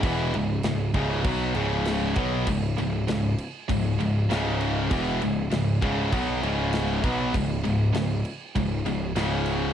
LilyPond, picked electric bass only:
\new Staff \with { instrumentName = "Picked electric bass" } { \clef bass \time 4/4 \key cis \minor \tempo 4 = 99 e,,8 cis,,8 cis,,8 cis,,8 b,,8 cis,,4 b,,8 | cis,,8 cis,,8 cis,,8 r8 cis,,8 cis,,8 cis,,4 | e,,8 cis,,8 cis,,8 cis,,8 b,,8 cis,,4 b,,8 | cis,,8 cis,,8 cis,,8 r8 cis,,8 cis,,8 cis,,4 | }